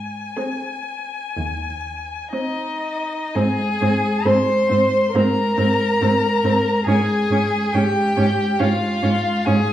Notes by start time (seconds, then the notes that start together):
Already playing: G#2 G#5
0.37 C4 G#4
1.37 D#2
2.33 C4 D#4 D#5
3.35 G#2 C4 G#4 G#5
3.81 G#2 C4
4.25 G#2 C4 C5 C6
4.69 G#2 C4
5.14 G#2 C4 A#4 A#5
5.58 G#2 C4
6.01 G#2 C4
6.44 G#2 C4
6.87 G#2 C#4 G#4 G#5
7.30 G#2 C#4
7.73 G#2 C#4 G4 G5
8.17 G#2 C#4
8.59 G#2 C#4 F4 F5
9.02 G#2 C#4
9.45 G#2 C#4 G#4 G#5